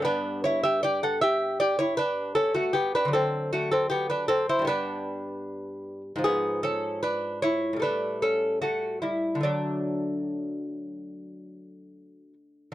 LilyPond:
<<
  \new Staff \with { instrumentName = "Lute" } { \time 4/4 \key d \major \tempo 4 = 76 <d' b'>8 <e' cis''>16 <g' e''>16 <g' d''>16 <a' fis''>16 <g' e''>8 <g' d''>16 <e' cis''>16 <d' b'>8 <cis' a'>16 <a fis'>16 <b g'>16 <d' b'>16 | <c' a'>8 <a fis'>16 <c' a'>16 <b g'>16 <d' b'>16 <c' a'>16 <e' c''>16 <d' b'>4.~ <d' b'>16 r16 | <b gis'>8 <cis' a'>8 <d' b'>8 <e' cis''>8 <d' b'>8 <cis' a'>8 <a fis'>8 <g e'>8 | <fis d'>2.~ <fis d'>8 r8 | }
  \new Staff \with { instrumentName = "Lute" } { \clef bass \time 4/4 \key d \major <g, g b>1 | <d fis>2 <g, g b>2 | <gis, eis>2 <a, g a>2 | <d a>1 | }
>>